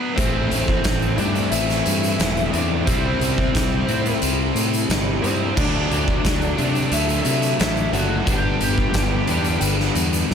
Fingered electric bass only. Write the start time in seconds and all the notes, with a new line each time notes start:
0.18 A1
0.50 A1
0.85 A1
1.18 G2
1.52 A1
1.86 G2
2.19 E1
2.53 E2
2.87 C2
3.19 C2
3.56 C2
3.87 A2
4.22 C2
4.55 A2
4.89 G1
5.23 G2
5.57 D2
5.90 D2
6.25 D2
6.58 C3
6.91 D2
7.25 C3
7.60 A1
7.92 F#1
8.27 G1
8.60 G1
8.94 G1
9.28 E2
9.61 G1
9.95 E2
10.30 D2